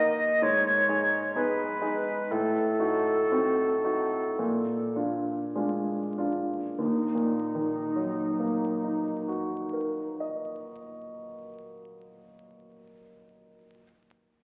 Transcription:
0.00 0.44 D#2 soft
0.00 0.44 A#3 soft
0.00 0.43 D#4 soft
0.00 0.43 A#4 soft
0.00 0.44 D#5 medium
0.42 0.86 G#2 soft
0.42 1.35 C#5 medium
0.89 1.31 D#4 soft
0.89 1.31 G#4 soft
1.35 1.78 B3 soft
1.35 1.79 D#4 soft
1.35 1.79 G#4 soft
1.35 2.33 B4 medium
1.82 2.26 D#4 soft
1.82 2.26 G#4 soft
2.31 2.78 A2 soft
2.31 4.97 A4 medium
2.80 3.27 D#4 soft
2.80 3.27 F#4 soft
3.32 3.81 C4 soft
3.32 3.81 D#4 soft
3.32 3.81 F#4 soft
3.84 4.35 D#4 soft
3.84 4.35 F#4 soft
4.39 4.94 A#2 soft
4.96 5.51 D4 soft
4.96 5.52 F4 soft
5.55 6.14 G#3 soft
5.55 6.14 D4 soft
5.55 6.14 F4 soft
6.18 6.76 D4 soft
6.18 6.76 F4 soft
6.78 10.16 D#2 soft
6.78 10.16 D#4 soft
7.15 10.53 A#2 soft
7.55 10.92 D#3 soft
7.96 11.34 F#3 soft
8.39 11.77 A#3 soft
8.84 12.22 D#4 soft
9.28 12.66 F#4 soft
9.73 13.00 A#4 soft
10.20 13.00 D#5 soft

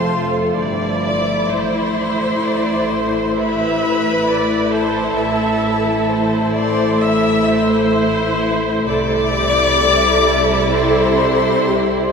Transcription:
0.00 0.54 F1 medium
0.00 0.55 F2 medium
0.00 1.49 F3 medium
0.00 1.49 A3 medium
0.00 0.58 F4 medium
0.00 0.11 A4 medium
0.00 0.58 C5 medium
0.00 0.58 C6 loud
0.12 0.58 A4 medium
0.57 1.51 G1 medium
0.57 1.50 G2 medium
0.57 3.35 E4 medium
0.57 1.52 D5 medium
1.06 1.49 D5 medium
1.06 1.55 D6 medium
1.51 5.17 A1 medium
1.51 5.17 A2 medium
1.51 5.01 A3 medium
1.51 5.01 E4 medium
1.51 2.44 C5 medium
1.51 3.38 C5 medium
1.51 3.39 C6 medium
2.46 2.92 D5 medium
2.91 3.37 C5 medium
3.36 6.97 E4 medium
3.36 4.74 B4 medium
3.36 4.28 E5 medium
3.36 4.73 B5 loud
4.27 4.72 D5 medium
4.72 6.52 A4 medium
4.72 5.17 C5 medium
4.72 6.52 A5 medium
5.16 8.84 A1 medium
5.16 8.84 A2 medium
5.16 8.84 A3 medium
5.16 8.84 E4 medium
5.16 6.08 E5 medium
6.08 6.55 C5 medium
6.54 7.03 C5 medium
6.54 7.01 D5 medium
6.54 7.02 C6 loud
7.00 7.92 E4 medium
7.00 7.48 E5 medium
7.00 7.95 E5 medium
7.00 7.94 E6 loud
7.47 8.87 C5 loud
7.93 8.84 E4 medium
8.85 12.12 C2 medium
8.85 12.12 C3 medium
8.85 12.12 G3 medium
8.85 12.12 E4 medium
8.85 9.33 A4 medium
8.85 10.70 D5 loud
8.85 10.76 D6 loud
9.33 9.80 G4 medium
9.80 11.68 A4 medium
10.74 12.12 C5 medium
10.74 12.12 C6 medium
11.69 12.12 G4 medium

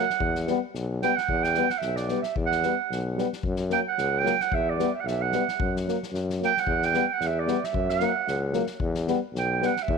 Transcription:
0.00 0.36 F#5 loud
0.10 snare soft
0.20 0.50 E2 medium
0.20 kick medium
0.35 snare soft
0.47 0.58 G3 medium
0.47 0.60 B3 medium
0.47 snare soft
0.74 1.04 B1 medium
0.74 snare soft
1.02 1.13 G3 medium
1.02 1.13 B3 medium
1.02 1.17 G5 loud
1.02 snare soft
1.16 1.44 F#5 loud
1.16 snare soft
1.29 1.59 E2 loud
1.29 kick medium
1.43 1.71 G5 medium
1.43 snare soft
1.54 1.66 G3 medium
1.54 1.68 B3 medium
1.54 snare soft
1.70 1.80 F#5 medium
1.70 snare soft
1.78 1.98 E5 medium
1.78 snare soft
1.83 2.13 B1 medium
1.96 2.21 D5 medium
1.96 snare soft
2.08 2.21 G3 medium
2.08 2.20 B3 medium
2.08 snare soft
2.22 2.35 E5 medium
2.22 snare soft
2.36 2.66 E2 medium
2.36 kick medium
2.46 2.99 F#5 medium
2.52 snare soft
2.63 2.74 G3 medium
2.63 2.75 B3 medium
2.63 snare soft
2.91 3.21 B1 medium
2.91 snare soft
3.16 3.27 G3 medium
3.16 3.29 B3 medium
3.16 snare soft
3.33 snare soft
3.43 3.74 F#2 medium
3.43 kick medium
3.56 snare soft
3.70 3.82 F#3 medium
3.70 3.81 A#3 medium
3.70 3.79 G5 loud
3.70 snare soft
3.88 4.19 F#5 medium
3.98 4.28 C#2 loud
3.98 snare soft
4.18 4.43 G5 medium
4.23 4.35 F#3 medium
4.23 4.35 A#3 medium
4.23 snare soft
4.40 4.56 F#5 medium
4.40 snare soft
4.52 4.82 E2 medium
4.52 4.71 E5 medium
4.52 kick medium
4.70 4.94 D5 medium
4.78 4.89 G3 medium
4.78 4.90 B3 medium
4.78 snare soft
4.95 5.02 E5 medium
5.00 5.08 F#5 medium
5.05 5.35 B1 medium
5.05 5.23 E5 medium
5.05 snare soft
5.22 5.75 F#5 medium
5.32 5.43 G3 medium
5.32 5.44 B3 medium
5.32 snare soft
5.48 snare soft
5.60 5.89 F#2 medium
5.60 kick medium
5.76 snare soft
5.87 5.98 F#3 medium
5.87 5.98 A#3 medium
5.87 snare soft
6.03 snare soft
6.12 6.42 F#2 medium
6.12 snare soft
6.30 snare soft
6.40 6.51 F#3 medium
6.40 6.52 A#3 medium
6.40 snare soft
6.45 6.61 G5 loud
6.57 6.85 F#5 medium
6.57 snare soft
6.67 6.97 E2 medium
6.67 kick medium
6.82 7.06 G5 loud
6.82 snare soft
6.93 7.04 G3 medium
6.93 7.05 B3 medium
6.93 snare soft
7.06 7.14 G5 medium
7.13 7.29 F#5 medium
7.20 7.50 E2 medium
7.20 snare soft
7.27 7.41 E5 medium
7.39 7.66 D5 medium
7.47 7.58 G3 medium
7.47 7.58 B3 medium
7.47 snare soft
7.64 7.92 E5 medium
7.64 snare soft
7.74 8.03 F#2 medium
7.74 kick medium
7.89 8.43 F#5 medium
7.89 snare soft
8.00 8.11 F#3 medium
8.00 8.12 A#3 medium
8.00 snare soft
8.28 8.58 C#2 loud
8.28 snare soft
8.53 8.64 F#3 medium
8.53 8.65 A#3 medium
8.53 snare soft
8.67 snare soft
8.80 9.11 E2 loud
8.80 kick medium
8.95 snare soft
9.07 9.19 G3 medium
9.07 9.19 B3 medium
9.07 snare soft
9.34 9.64 B1 loud
9.34 snare soft
9.39 9.67 G5 medium
9.61 9.72 G3 medium
9.61 9.72 B3 medium
9.61 snare soft
9.65 9.84 F#5 medium
9.76 snare soft
9.82 9.98 E5 medium
9.88 9.98 E2 loud
9.88 kick medium

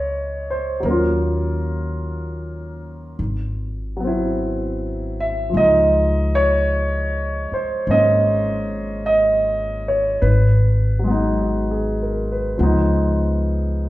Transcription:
0.00 0.79 C#2 medium
0.00 0.84 G#3 soft
0.00 0.81 A#3 soft
0.00 0.86 C#4 soft
0.00 0.86 D#4 soft
0.00 0.51 C5 medium
0.00 0.43 C#5 medium
0.00 0.85 D#5 medium
0.51 0.86 C5 medium
0.80 3.14 D#2 medium
0.80 3.17 F#3 soft
0.80 3.18 A#3 soft
0.85 3.20 C#4 soft
0.85 3.15 A#4 medium
0.90 3.22 F4 soft
3.19 5.49 G#1 medium
3.97 5.52 F#3 soft
3.97 5.54 B3 soft
4.04 5.55 C4 soft
4.04 5.57 E4 soft
5.20 5.53 E5 medium
5.50 10.21 F3 soft
5.50 7.86 G#3 soft
5.54 7.48 C#2 medium
5.54 6.38 D#5 medium
5.61 10.27 D#4 soft
6.35 7.56 C#5 medium
7.52 7.90 C5 medium
7.52 muted upright bass stroke soft
7.87 10.19 G#1 medium
7.87 10.23 G#3 soft
7.87 10.24 A#3 soft
7.87 10.24 C#4 soft
7.87 9.03 D#5 medium
9.06 9.89 D#5 medium
9.88 10.21 C#5 medium
10.22 12.54 G#1 medium
10.22 12.30 B4 medium
10.99 12.56 F#3 soft
11.04 12.58 G#3 soft
11.04 12.59 B3 soft
11.11 12.61 D#4 soft
11.42 11.98 F#4 soft
11.71 12.22 G#4 soft
12.02 12.37 A#4 soft
12.32 12.72 B4 soft
12.58 13.89 C#2 medium
12.58 13.89 F3 soft
12.58 13.89 G#3 soft
12.58 13.89 B3 soft
12.63 13.89 D#4 medium

